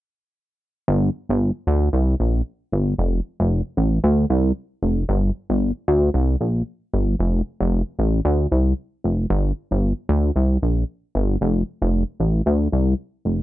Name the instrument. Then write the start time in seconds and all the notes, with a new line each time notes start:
analog synth bass
0.88 G1
1.29 G1
1.67 D2
1.93 C2
2.20 A#1
2.72 G1
2.98 F1
3.40 F1
3.77 A1
4.04 D2
4.30 C2
4.83 F1
5.09 G1
5.50 G1
5.88 D2
6.14 C2
6.41 A#1
6.93 G1
7.19 F1
7.60 F1
7.99 A1
8.25 D2
8.52 C2
9.04 F1
9.30 G1
9.71 G1
10.09 D2
10.36 C2
10.62 A#1
11.15 G1
11.41 F1
11.82 F1
12.20 A1
12.46 D2
12.72 C2
13.25 F1